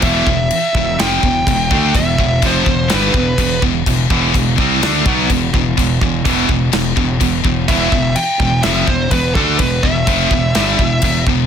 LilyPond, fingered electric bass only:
\new Staff \with { instrumentName = "Fingered electric bass" } { \clef bass \time 4/4 \key e \phrygian \tempo 4 = 125 e,,8 e,,8 r8 e,,8 f,,8 e,,8 e,,8 d,8 | e,,8 e,,8 f,,8 e,,8 g,,8 e,,8 e,,8 e,,8 | e,,8 e,,8 e,,8 c,8 d,8 b,,8 e,,8 e,,8 | e,,8 e,,8 e,,8 e,,8 e,,8 e,,8 e,,8 e,,8 |
e,,8 e,,8 r8 e,,8 f,,8 e,,8 e,,8 d,8 | e,,8 e,,8 f,,8 e,,8 g,,8 e,,8 e,,8 e,,8 | }